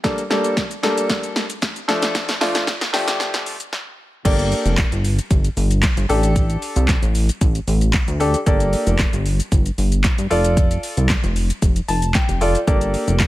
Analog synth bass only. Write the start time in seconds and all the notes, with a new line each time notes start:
4.25 G1
4.65 F1
4.92 G1
5.31 G1
5.57 G1
5.97 G1
6.09 A1
6.76 C2
7.02 A1
7.41 A1
7.67 A1
8.08 D2
8.47 G1
8.87 F1
9.13 G1
9.52 G1
9.78 G1
10.18 G2
10.31 F1
10.97 C2
11.24 F1
11.62 F1
11.89 F1
12.29 F1
12.68 G1
13.08 F1